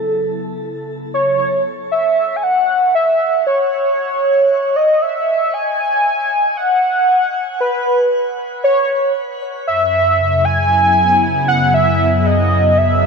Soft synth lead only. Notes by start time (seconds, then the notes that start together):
Already playing: A4
1.14 C#5
1.92 E5
2.36 G#5
2.43 F#5
2.95 E5
3.47 C#5
4.76 D#5
5.02 E5
5.54 G#5
6.57 F#5
7.60 B4
8.64 C#5
9.67 E5
10.45 G#5
11.48 F#5
11.74 E5
12.19 E5
12.26 D#5
12.78 E5